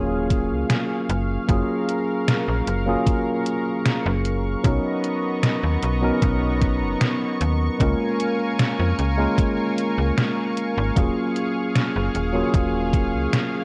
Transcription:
0.00 0.52 D#1 medium
0.00 1.47 F#3 medium
0.00 1.48 A#3 medium
0.00 1.49 C#4 medium
0.00 1.49 F4 medium
0.00 1.46 G#4 medium
0.00 1.50 G#4 medium
0.00 4.61 F5 medium
0.00 13.64 C#6 loud
0.30 kick loud
0.30 closed hi-hat medium
0.51 0.65 C#2 medium
0.70 snare loud
0.70 closed hi-hat medium
1.10 1.38 F#1 loud
1.10 closed hi-hat medium
1.47 1.63 F#1 loud
1.47 2.82 F#3 medium
1.47 2.82 A#3 medium
1.47 2.83 C#4 medium
1.47 2.83 F4 medium
1.47 2.83 G#4 medium
1.47 4.61 A#4 medium
1.47 kick loud
1.47 closed hi-hat medium
1.89 closed hi-hat medium
2.28 snare loud
2.28 closed hi-hat medium
2.48 2.62 A#1 medium
2.67 2.96 F#1 medium
2.67 closed hi-hat medium
2.86 4.59 F#3 medium
2.86 4.60 A#3 medium
2.86 4.60 C#4 medium
2.86 4.60 F4 medium
2.86 4.61 G#4 medium
3.07 kick loud
3.07 closed hi-hat medium
3.46 closed hi-hat medium
3.85 snare loud
3.85 closed hi-hat medium
4.06 4.56 F#1 loud
4.25 closed hi-hat medium
4.63 4.79 B1 medium
4.63 5.98 F#3 medium
4.63 7.77 B3 medium
4.63 5.98 B3 medium
4.63 5.98 C#4 medium
4.63 5.99 D#4 medium
4.63 5.99 A#4 medium
4.63 7.77 D#5 medium
4.63 7.77 A#5 medium
4.63 kick loud
4.63 closed hi-hat medium
5.04 closed hi-hat medium
5.43 snare loud
5.43 closed hi-hat medium
5.63 5.77 D#2 medium
5.83 6.12 B1 medium
5.83 closed hi-hat medium
6.01 7.75 F#3 medium
6.01 7.75 B3 medium
6.01 7.76 C#4 medium
6.01 7.76 D#4 medium
6.01 7.76 A#4 medium
6.22 6.83 B1 medium
6.22 kick loud
6.22 closed hi-hat medium
6.62 kick loud
6.62 closed hi-hat medium
6.82 6.96 F#1 medium
7.01 snare loud
7.01 closed hi-hat medium
7.41 7.69 D#2 loud
7.41 closed hi-hat medium
7.78 7.95 C#2 loud
7.78 9.13 G#3 medium
7.78 9.13 A#3 medium
7.78 9.14 C#4 medium
7.78 9.14 F4 medium
7.78 10.93 A#4 medium
7.78 9.15 A#4 medium
7.78 13.64 F5 medium
7.78 10.93 G#5 medium
7.78 kick loud
7.78 closed hi-hat medium
8.20 closed hi-hat medium
8.59 snare loud
8.59 closed hi-hat medium
8.79 8.93 F2 medium
8.99 9.27 C#2 medium
8.99 closed hi-hat medium
9.17 10.91 G#3 medium
9.17 10.91 A#3 medium
9.17 10.92 C#4 medium
9.17 10.92 F4 medium
9.17 10.92 A#4 medium
9.38 kick loud
9.38 closed hi-hat medium
9.78 closed hi-hat medium
9.98 10.12 C#2 medium
10.17 snare loud
10.17 closed hi-hat medium
10.57 closed hi-hat medium
10.77 10.91 G#1 loud
10.95 11.11 D#1 medium
10.95 12.29 F#3 medium
10.95 12.30 A#3 medium
10.95 12.30 C#4 medium
10.95 12.30 F4 medium
10.95 13.64 G#4 medium
10.95 12.31 G#4 medium
10.95 kick loud
10.95 closed hi-hat medium
11.36 closed hi-hat medium
11.75 snare loud
11.75 closed hi-hat medium
11.96 12.09 F#1 medium
12.15 12.43 D#1 medium
12.15 closed hi-hat medium
12.33 13.64 F#3 medium
12.33 13.64 A#3 medium
12.33 13.64 C#4 medium
12.33 13.64 F4 medium
12.33 13.64 G#4 medium
12.54 13.16 D#1 medium
12.54 kick loud
12.54 closed hi-hat medium
12.94 kick loud
12.94 closed hi-hat medium
13.14 13.28 C#2 medium
13.33 snare loud
13.33 closed hi-hat medium

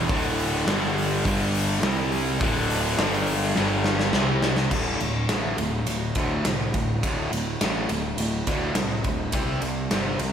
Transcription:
0.09 0.63 D1 loud
0.09 0.67 D2 loud
0.09 0.67 A2 loud
0.09 0.68 D3 loud
0.09 kick loud
0.09 open hi-hat medium
0.39 open hi-hat medium
0.66 1.20 G1 loud
0.66 1.25 G2 loud
0.66 1.25 D3 loud
0.66 snare loud
0.66 open hi-hat medium
0.70 1.26 G3 loud
0.83 snare soft
0.98 open hi-hat medium
1.25 1.79 G1 medium
1.25 1.83 G2 medium
1.25 1.83 D3 loud
1.25 1.83 G3 medium
1.25 kick medium
1.25 open hi-hat medium
1.54 open hi-hat medium
1.83 2.37 C2 loud
1.83 2.40 C3 medium
1.83 2.40 G3 medium
1.83 2.41 C4 medium
1.83 snare loud
1.83 open hi-hat medium
2.12 open hi-hat medium
2.41 2.95 D1 medium
2.41 2.98 D2 loud
2.41 2.98 A2 loud
2.41 2.99 D3 loud
2.41 kick loud
2.41 open hi-hat medium
2.70 open hi-hat medium
2.98 3.52 G1 loud
2.98 3.56 G2 loud
2.98 3.56 D3 loud
2.98 3.56 G3 loud
2.98 snare loud
2.98 open hi-hat medium
3.13 snare soft
3.27 open hi-hat medium
3.56 4.10 G1 medium
3.56 4.13 G2 loud
3.56 4.13 D3 loud
3.56 4.14 G3 loud
3.56 snare medium
3.84 snare medium
3.99 snare medium
4.13 4.67 C2 medium
4.13 4.70 C3 medium
4.13 4.71 G3 medium
4.13 4.72 C4 medium
4.13 snare medium
4.42 snare loud
4.57 snare medium
4.71 4.95 D1 medium
4.71 4.98 D2 medium
4.71 4.99 A2 medium
4.71 4.99 D3 medium
4.71 kick loud
4.71 crash loud
5.00 5.24 D1 medium
5.00 5.27 D2 medium
5.00 5.27 A2 medium
5.00 ride medium
5.29 5.53 A1 medium
5.29 5.57 D2 medium
5.29 5.57 A2 medium
5.29 5.58 D3 loud
5.29 snare loud
5.29 ride medium
5.58 5.82 D1 medium
5.58 5.85 D2 medium
5.58 5.85 A2 medium
5.58 ride medium
5.87 6.11 D1 medium
5.87 6.13 D2 medium
5.87 6.14 A2 medium
5.87 ride medium
6.15 6.40 D2 medium
6.15 6.44 D2 medium
6.15 6.44 A2 medium
6.15 6.44 D3 medium
6.15 kick medium
6.15 ride medium
6.45 6.69 C2 medium
6.45 6.71 D2 medium
6.45 6.71 A2 medium
6.45 snare loud
6.45 ride medium
6.74 6.98 D1 medium
6.74 7.00 D2 medium
6.74 7.00 A2 medium
6.74 kick medium
6.74 ride medium
7.03 7.27 D1 medium
7.03 7.30 D2 medium
7.03 7.31 A2 medium
7.03 7.31 D3 medium
7.03 kick loud
7.03 ride medium
7.32 7.55 D1 medium
7.32 7.58 D2 medium
7.32 7.58 A2 medium
7.32 ride medium
7.61 7.85 A1 medium
7.61 7.88 D2 medium
7.61 7.88 A2 medium
7.61 7.89 D3 loud
7.61 snare loud
7.61 ride medium
7.89 8.13 D1 medium
7.89 8.16 D2 medium
7.89 8.16 A2 medium
7.89 ride medium
8.18 8.42 D1 medium
8.18 8.45 D2 medium
8.18 8.45 A2 medium
8.18 ride medium
8.47 8.71 D2 medium
8.47 8.75 D2 medium
8.47 8.75 A2 loud
8.47 8.75 D3 loud
8.47 kick medium
8.47 ride medium
8.75 9.00 C2 medium
8.75 9.03 D2 medium
8.75 9.03 A2 medium
8.75 snare loud
8.75 ride medium
9.04 9.29 D1 medium
9.04 9.32 D2 medium
9.04 9.32 A2 medium
9.04 kick medium
9.04 ride medium
9.32 9.58 C2 medium
9.32 9.61 C3 medium
9.32 9.61 G3 loud
9.32 9.61 C4 medium
9.32 kick loud
9.32 ride medium
9.62 9.86 C2 medium
9.62 9.89 C3 medium
9.62 9.89 G3 medium
9.62 ride medium
9.91 10.15 G1 medium
9.91 10.19 C3 medium
9.91 10.19 G3 medium
9.91 10.19 C4 loud
9.91 snare loud
9.91 ride medium
10.19 10.32 C2 medium
10.19 10.32 C3 medium
10.19 10.32 G3 medium
10.19 ride medium

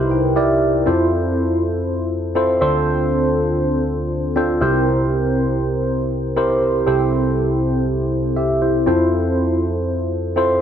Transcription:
0.00 0.83 C2 medium
0.00 0.83 C3 medium
0.00 0.89 D#4 medium
0.00 0.27 E4 medium
0.00 0.27 G4 medium
0.00 0.27 A#4 medium
0.00 0.88 B4 medium
0.00 0.27 C5 loud
0.11 0.35 G5 medium
0.36 0.77 E4 medium
0.36 0.77 G4 medium
0.36 0.77 A#4 medium
0.36 0.77 D5 medium
0.36 0.83 E5 medium
0.86 2.58 F2 medium
0.86 1.67 C4 medium
0.86 1.67 E4 medium
0.86 1.68 F4 medium
0.86 1.68 A4 medium
0.86 1.68 C5 medium
2.35 2.60 C4 medium
2.35 2.61 E4 medium
2.35 2.60 F4 medium
2.35 2.60 A4 medium
2.35 2.61 C5 medium
2.61 4.58 D2 medium
2.61 4.58 D3 medium
2.61 3.42 C4 medium
2.61 3.42 D4 medium
2.61 3.43 F4 medium
2.61 3.43 A4 medium
2.61 3.43 C5 loud
4.36 4.60 C4 medium
4.36 4.61 D4 medium
4.36 4.62 F4 medium
4.36 4.62 A4 medium
4.36 4.61 C5 loud
4.61 6.57 C2 medium
4.61 6.58 C3 medium
4.61 5.42 C4 medium
4.61 5.42 E4 medium
4.61 5.43 G4 medium
4.61 5.43 A#4 medium
4.61 5.43 C5 loud
6.36 6.77 C4 medium
6.36 6.77 E4 medium
6.36 6.77 G4 medium
6.36 6.77 A#4 medium
6.36 6.78 C5 loud
6.87 8.83 C2 medium
6.87 8.83 C3 medium
6.87 7.68 C4 medium
6.87 7.68 E4 medium
6.87 7.68 G4 medium
6.87 7.68 A4 medium
6.87 7.68 C5 medium
8.36 8.61 G4 medium
8.36 8.60 E5 medium
8.62 8.85 E4 medium
8.62 8.86 C5 medium
8.86 10.58 F2 medium
8.86 9.67 C4 medium
8.86 9.68 E4 medium
8.86 9.68 F4 medium
8.86 9.68 A4 medium
8.86 9.68 C5 medium
10.36 10.59 C4 medium
10.36 10.61 E4 medium
10.36 10.60 F4 medium
10.36 10.60 A4 medium
10.36 10.61 C5 loud

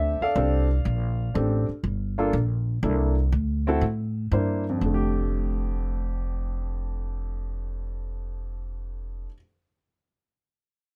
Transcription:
0.00 0.18 D2 medium
0.00 0.27 C4 medium
0.00 0.27 D4 medium
0.00 0.27 G4 medium
0.00 0.21 A4 medium
0.00 0.23 E5 medium
0.21 0.35 A4 medium
0.21 1.32 D5 medium
0.21 1.32 F5 medium
0.21 muted upright bass stroke soft
0.35 0.84 C2 medium
0.35 0.66 C4 medium
0.35 0.67 D4 medium
0.35 0.67 G4 medium
0.35 0.67 A4 medium
0.85 1.34 A#1 medium
1.34 1.67 A1 medium
1.34 1.65 C4 medium
1.34 1.65 D4 medium
1.34 1.66 G4 medium
1.34 1.66 A4 medium
1.68 muted upright bass stroke soft
1.84 2.32 G1 medium
2.18 2.32 A#3 medium
2.18 2.33 D4 medium
2.18 2.33 F4 medium
2.18 2.33 A4 medium
2.33 2.82 A#1 medium
2.83 3.31 C2 medium
2.83 3.14 A#3 medium
2.83 3.14 D4 medium
2.83 3.14 E4 medium
2.83 3.14 A4 medium
3.32 3.81 D2 medium
3.67 3.81 C4 medium
3.67 3.82 E4 medium
3.67 3.82 F#4 medium
3.67 3.82 A4 medium
3.81 4.30 A2 medium
4.31 4.80 G2 medium
4.31 4.63 A#3 medium
4.31 4.63 D4 medium
4.31 4.63 E4 soft
4.31 4.63 C5 medium
4.69 9.24 F2 medium
4.77 9.26 F1 medium
4.77 9.28 D3 medium
4.86 9.32 A3 medium
4.94 9.36 G4 medium

